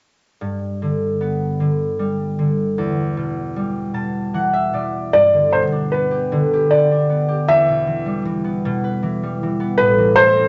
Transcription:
0.41 harp G2
0.82 harp D3
1.21 harp B3
1.60 harp D3
1.99 harp G3
2.39 harp D3
2.78 harp E2
3.17 harp B2
3.56 harp G3
3.94 harp B2 A5
4.34 harp E3 F#5
4.53 harp E5
4.73 harp B2 D5
5.13 harp G2, felt piano D5
5.33 harp D3
5.53 harp B2, felt piano C5
5.72 harp D4
5.92 harp B3, felt piano B4
6.11 harp G4
6.32 harp D3
6.53 harp G4
6.71 harp B3, felt piano D5
6.91 harp D4
7.09 harp B3
7.28 harp G4
7.48 harp E2, felt piano E5
7.68 harp B2
7.87 harp E3
8.06 harp G3
8.25 harp E3
8.44 harp B3
8.65 harp B2
8.84 harp B4
9.03 harp E3
9.23 harp G3
9.43 harp E3
9.60 harp B3
9.78 harp A2, felt piano B4
9.98 harp E3
10.16 harp A3, felt piano C5
10.36 harp C4

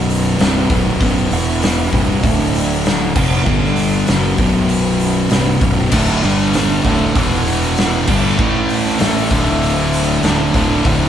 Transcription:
Already playing: fingered electric bass B0, distorted electric guitar B1 F#2 B2, brass ensemble B3 F#4 B4
0.10 open hi-hat
0.38 fingered electric bass C1, distorted electric guitar C2 G2 C3, snare, open hi-hat
0.70 fingered electric bass B0, distorted electric guitar B1 F#2 B2, kick, open hi-hat
1.00 fingered electric bass B0, distorted electric guitar B1 F#2 B2, kick, open hi-hat
1.31 fingered electric bass E1, distorted electric guitar E2 B2 E3, brass ensemble E4 F#5, open hi-hat
1.62 snare, open hi-hat
1.92 fingered electric bass C1, distorted electric guitar C2 G2 C3, brass ensemble B3 F#4 B4, kick, open hi-hat
2.23 fingered electric bass D1, distorted electric guitar D2 A2 D3, brass ensemble D4 A4 E5, kick, open hi-hat
2.55 open hi-hat
2.85 snare, open hi-hat
3.15 fingered electric bass F1, distorted electric guitar F2 C3 F3, brass ensemble B3 B4 F#5, kick, crash
3.45 fingered electric bass G1, distorted electric guitar G2 D3 G3, brass ensemble G3 D4 A4, kick
3.64 snare
3.76 open hi-hat
4.06 fingered electric bass F#1, distorted electric guitar F#2 C#3 F#3, brass ensemble B3 F#4 B4, snare, open hi-hat
4.38 fingered electric bass B0, distorted electric guitar B1 F#2 B2, kick, open hi-hat
4.69 open hi-hat
5.00 open hi-hat
5.30 fingered electric bass C1, distorted electric guitar C2 G2 C3, snare, open hi-hat
5.61 fingered electric bass B0, distorted electric guitar B1 F#2 B2, kick, open hi-hat
5.92 fingered electric bass D1, distorted electric guitar D2 A2 D3, brass ensemble D4 A4 E5, kick, crash
6.09 snare
6.23 fingered electric bass G1, distorted electric guitar G2 D3 G3, brass ensemble G3, open hi-hat
6.53 snare, open hi-hat
6.84 fingered electric bass D1, distorted electric guitar D2 A2 D3, brass ensemble E5, kick, open hi-hat
7.15 fingered electric bass E1, distorted electric guitar E2 B2 E3, brass ensemble E4 B4 F#5, kick, open hi-hat
7.46 open hi-hat
7.77 snare, open hi-hat
8.07 fingered electric bass G1, distorted electric guitar G2 D3 G3, brass ensemble D4 A4 E5, kick, crash
8.38 fingered electric bass A1, distorted electric guitar A2 E3 A3, brass ensemble A3 E4 B4, kick
8.69 open hi-hat
8.86 snare
8.98 fingered electric bass A1, distorted electric guitar A2 E3 A3, brass ensemble D4 A4 E5, snare, open hi-hat
9.29 fingered electric bass D1, distorted electric guitar D2 A2 D3, kick, open hi-hat
9.62 open hi-hat
9.93 open hi-hat
10.23 fingered electric bass D1, distorted electric guitar D2 A2 D3, snare, open hi-hat
10.53 fingered electric bass D1, distorted electric guitar D2 A2 D3, kick, open hi-hat
10.84 fingered electric bass D1, distorted electric guitar D2 A2 D3, kick, open hi-hat

